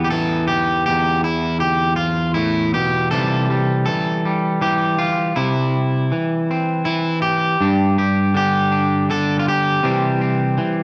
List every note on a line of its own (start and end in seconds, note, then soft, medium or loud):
0.00 0.87 E2 medium
0.00 0.12 E3 medium
0.00 3.13 G3 soft
0.00 3.12 B3 soft
0.04 0.10 G4 medium
0.10 1.99 E3 medium
0.10 0.47 A4 loud
0.48 0.85 G4 medium
0.86 3.13 E2 medium
0.86 1.24 G4 loud
1.24 1.60 E4 medium
1.60 1.96 G4 medium
1.96 2.34 F4 medium
2.34 2.74 A2 medium
2.34 2.73 E4 medium
2.74 3.11 B2 medium
2.74 3.10 G4 medium
3.11 3.87 C3 medium
3.11 3.87 E3 soft
3.11 3.50 G3 soft
3.11 3.84 A4 medium
3.50 4.25 G3 soft
3.86 4.61 E3 medium
3.86 4.61 A4 medium
4.25 7.75 G3 soft
4.62 5.32 E3 medium
4.62 5.36 G4 medium
4.99 5.36 F4 medium
5.36 6.11 C3 medium
5.36 6.84 E4 medium
6.12 6.85 E3 medium
6.51 7.56 C4 soft
6.85 7.55 E3 medium
6.85 7.21 E4 medium
7.22 7.96 G4 medium
7.61 9.79 G2 medium
7.61 8.71 D4 medium
7.98 8.36 G4 soft
8.34 9.09 D3 medium
8.34 9.10 G4 loud
8.72 9.79 D4 soft
9.10 9.83 D3 medium
9.10 9.39 A4 loud
9.39 9.46 F4 medium
9.48 10.83 G4 medium
9.83 10.58 C3 medium
9.83 10.57 E3 medium
9.83 10.83 G3 soft
9.83 10.20 C4 medium
10.21 10.83 C4 soft
10.58 10.83 E3 medium